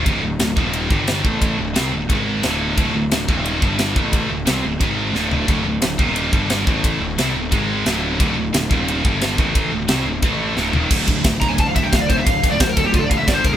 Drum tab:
CC |--------|--------|--------|--------|
RD |b-b-b-b-|b-b-b-b-|b-b-b-b-|b-b-b---|
SD |--o---o-|--o---o-|--o---o-|--o---o-|
FT |--------|--------|--------|-------o|
BD |o--o-o-o|o---o---|o--o-o-o|o---o---|

CC |--------|--------|--------|--------|
RD |b-b-b-b-|b-b-b-b-|b-b-b-b-|b-b-b---|
SD |--o---o-|--o---o-|--o---o-|--o---o-|
FT |--------|--------|--------|-------o|
BD |o--o-o-o|o---o---|o--o-o-o|o---o---|

CC |x-------|--------|
RD |-xxxxxxx|xxxxxxxx|
SD |--o---o-|--o---o-|
FT |--------|--------|
BD |oooooooo|oooooooo|